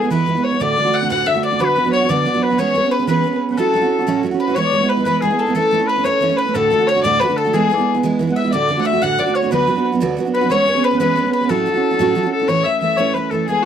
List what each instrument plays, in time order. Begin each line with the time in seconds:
Already playing: fiddle G#4
0.02 steel-string acoustic guitar G#3 B3 E4
0.10 steel-string acoustic guitar E3 G#3 B3 E4, oboe B4, fiddle B4
0.26 steel-string acoustic guitar E3 G#3 B3 E4
0.35 steel-string acoustic guitar G#3 B3 E4
0.44 oboe C#5, fiddle C#5
0.51 steel-string acoustic guitar G#3 B3 E4
0.60 steel-string acoustic guitar D2 A2 D3 A3 D4 F#4, mandolin D5, oboe D5, fiddle D5
0.76 steel-string acoustic guitar D3 A3 D4 F#4
0.85 steel-string acoustic guitar D3 A3 D4 F#4
0.93 mandolin F#5, fiddle F#5, oboe F#5
1.01 steel-string acoustic guitar D3 A3 D4 F#4
1.09 steel-string acoustic guitar D2 A2 D3 A3 D4 F#4, mandolin F#5, fiddle F#5, oboe F#5
1.26 steel-string acoustic guitar D3 A3 D4 F#4, mandolin E5, fiddle E5, oboe E5
1.34 steel-string acoustic guitar D3 A3 D4 F#4
1.43 mandolin D5, fiddle D5, oboe D5
1.51 steel-string acoustic guitar D3 A3 D4 F#4
1.59 steel-string acoustic guitar D2 D3 F#3 B3 D4 F#4, mandolin B4, fiddle B4, oboe B4
1.76 steel-string acoustic guitar F#3 B3 D4 F#4, oboe B4
1.84 steel-string acoustic guitar F#3 B3 D4 F#4
1.93 fiddle C#5, mandolin C#5, oboe C#5
2.01 steel-string acoustic guitar F#3 B3 D4 F#4
2.09 steel-string acoustic guitar D2 D3 F#3 B3 D4 F#4, mandolin D5, oboe D5, fiddle D5
2.25 steel-string acoustic guitar F#3 B3 D4 F#4
2.34 steel-string acoustic guitar F#3 B3 D4 F#4
2.42 oboe B4, fiddle B4
2.50 steel-string acoustic guitar F#3 B3 D4 F#4
2.58 steel-string acoustic guitar E3 G#3 B3 C#4 G#4, oboe C#5, mandolin C#5, fiddle C#5
2.74 steel-string acoustic guitar G#3 B3 C#4 G#4
2.83 steel-string acoustic guitar B3 C#4 G#4
2.91 mandolin B4, fiddle B4
2.99 steel-string acoustic guitar B3 C#4 G#4
3.07 steel-string acoustic guitar E3 G#3 B3 C#4 G#4, oboe B4, fiddle B4, mandolin B4
3.24 steel-string acoustic guitar G#3 B3 C#4 G#4
3.33 steel-string acoustic guitar B3 C#4 G#4
3.49 steel-string acoustic guitar B3 C#4 G#4, oboe B4
3.57 steel-string acoustic guitar A2 F#3 C#4 E4 F#4, mandolin A4, oboe A4, fiddle A4
3.74 steel-string acoustic guitar F#3 C#4 E4 F#4
3.81 steel-string acoustic guitar C#4 E4 F#4
3.99 steel-string acoustic guitar C#4 E4 F#4
4.07 steel-string acoustic guitar A2 F#3 C#4 E4 F#4
4.23 steel-string acoustic guitar F#3 C#4 E4 F#4
4.31 steel-string acoustic guitar C#4 E4 F#4
4.40 mandolin B4, fiddle B4, oboe B4
4.48 steel-string acoustic guitar C#4 E4 F#4
4.55 steel-string acoustic guitar E3 G#3 B3 E4, fiddle C#5, mandolin C#5, oboe C#5
4.67 oboe D5
4.72 steel-string acoustic guitar E3 G#3 B3 E4
4.78 steel-string acoustic guitar E4, oboe C#5
4.82 steel-string acoustic guitar G#3 B3
4.89 fiddle B4, oboe B4, mandolin B4
4.97 steel-string acoustic guitar G#3 B3 E4
5.05 steel-string acoustic guitar E3 G#3 B3 E4, fiddle B4, oboe B4, mandolin B4
5.21 steel-string acoustic guitar E3 G#3 B3, oboe G#4, fiddle G#4, mandolin G#4
5.25 steel-string acoustic guitar E4
5.30 steel-string acoustic guitar G#3 B3 E4
5.39 fiddle A4, mandolin A4
5.47 steel-string acoustic guitar G#3 B3 E4
5.54 steel-string acoustic guitar E3 A3 C#4 E4, oboe A4, fiddle A4, mandolin A4
5.71 steel-string acoustic guitar E3 A3 C#4 E4
5.79 steel-string acoustic guitar A3 C#4 E4
5.87 oboe B4, fiddle B4, mandolin B4
5.96 steel-string acoustic guitar A3 C#4 E4
6.04 steel-string acoustic guitar E3 A3 C#4 E4, fiddle C#5, oboe C#5, mandolin C#5
6.20 steel-string acoustic guitar E3 A3 C#4 E4
6.29 steel-string acoustic guitar A3 C#4 E4
6.37 fiddle B4, mandolin B4, oboe B4
6.45 steel-string acoustic guitar A3 C#4 E4
6.54 steel-string acoustic guitar D2 A2 D3 A3 D4 F#4, fiddle A4, oboe A4, mandolin A4
6.70 steel-string acoustic guitar D3 A3 D4 F#4
6.78 steel-string acoustic guitar D3 A3 D4 F#4
6.87 fiddle C#5, mandolin C#5, oboe C#5
6.95 steel-string acoustic guitar D3 A3 D4 F#4
7.03 steel-string acoustic guitar D2 A2 D3 A3 D4 F#4, fiddle D5, oboe D5, mandolin D5
7.20 steel-string acoustic guitar D3 A3 D4 F#4, fiddle B4, mandolin B4, oboe B4
7.28 steel-string acoustic guitar D3 A3 D4 F#4
7.37 fiddle A4, oboe A4, mandolin A4
7.44 steel-string acoustic guitar D3 A3 D4 F#4
7.53 steel-string acoustic guitar E3 G#3 B3 E4, oboe G#4, fiddle G#4, mandolin G#4
7.70 steel-string acoustic guitar E3 G#3 B3 E4
7.74 steel-string acoustic guitar E4, oboe D5
7.80 steel-string acoustic guitar G#3 B3
7.94 steel-string acoustic guitar G#3 B3 E4
8.03 steel-string acoustic guitar E3 G#3 B3 E4
8.19 steel-string acoustic guitar E3 G#3 B3 E4
8.27 steel-string acoustic guitar G#3 B3 E4
8.33 oboe E5 F#5, fiddle E5, mandolin E5
8.44 steel-string acoustic guitar G#3 B3 E4
8.52 steel-string acoustic guitar D2 A2 D3 A3 D4 F#4, fiddle D5, mandolin D5, oboe D5
8.68 steel-string acoustic guitar D3 A3 D4 F#4
8.76 steel-string acoustic guitar D3 A3 D4 F#4
8.81 mandolin E5, fiddle F#5
8.86 fiddle E5, oboe E5
8.93 steel-string acoustic guitar D3 A3 D4 F#4
9.02 steel-string acoustic guitar D2 A2 D3 A3 D4 F#4, mandolin F#5, oboe F#5, fiddle F#5
9.18 steel-string acoustic guitar D3 A3 D4 F#4, mandolin D5, fiddle D5
9.27 steel-string acoustic guitar D3 A3 D4 F#4
9.35 oboe C#5, mandolin C#5, fiddle C#5
9.43 steel-string acoustic guitar D3 A3 D4 F#4
9.51 steel-string acoustic guitar D2 D3 F#3 B3 D4 F#4, oboe B4, mandolin B4, fiddle B4
9.67 steel-string acoustic guitar F#3 B3 D4 F#4
9.76 steel-string acoustic guitar F#3 B3 D4 F#4
9.92 steel-string acoustic guitar F#3 B3 D4 F#4
10.00 steel-string acoustic guitar D2 D3 F#3 B3 D4 F#4
10.17 steel-string acoustic guitar F#3 B3 D4 F#4
10.25 steel-string acoustic guitar F#3 B3 D4 F#4
10.34 oboe B4, mandolin B4, fiddle B4
10.41 steel-string acoustic guitar F#3 B3 D4 F#4
10.50 steel-string acoustic guitar E3 G#3 B3 C#4 G#4, oboe C#5, fiddle C#5, mandolin C#5
10.66 steel-string acoustic guitar G#3 B3 C#4 G#4, oboe C#5
10.75 steel-string acoustic guitar B3 C#4 G#4
10.84 oboe B4, mandolin B4, fiddle B4
10.91 steel-string acoustic guitar B3 C#4 G#4
11.00 steel-string acoustic guitar E3 G#3 B3 C#4 G#4, oboe B4, mandolin B4, fiddle B4
11.16 steel-string acoustic guitar G#3 B3 C#4 G#4
11.25 steel-string acoustic guitar B3 C#4 G#4
11.32 oboe B4, mandolin B4, fiddle B4
11.41 steel-string acoustic guitar B3 C#4 G#4
11.49 steel-string acoustic guitar A2 F#3 C#4 E4 F#4, mandolin A4, oboe A4, fiddle A4
11.66 steel-string acoustic guitar F#3 C#4 E4 F#4
11.74 steel-string acoustic guitar C#4 E4 F#4
11.91 steel-string acoustic guitar C#4 E4 F#4
11.99 steel-string acoustic guitar A2 F#3 C#4 E4 F#4
12.15 steel-string acoustic guitar F#3 C#4 E4 F#4
12.23 steel-string acoustic guitar C#4 E4 F#4
12.32 oboe A4, fiddle A4
12.39 steel-string acoustic guitar C#4 E4 F#4
12.48 steel-string acoustic guitar A2 E3 A3 C#4 E4, oboe C#5, fiddle C#5
12.64 steel-string acoustic guitar E3 A3 C#4 E4, oboe E5, fiddle E5
12.81 steel-string acoustic guitar E3 A3 C#4 E4, fiddle E5
12.97 steel-string acoustic guitar A2 E3 A3 C#4 E4, oboe C#5, fiddle C#5
13.14 steel-string acoustic guitar E3 A3 C#4 E4, fiddle B4, oboe B4
13.30 steel-string acoustic guitar E3 A3 C#4 E4, fiddle A4, oboe A4
13.47 steel-string acoustic guitar E3 G#3 B3 E4, fiddle G#4, oboe G#4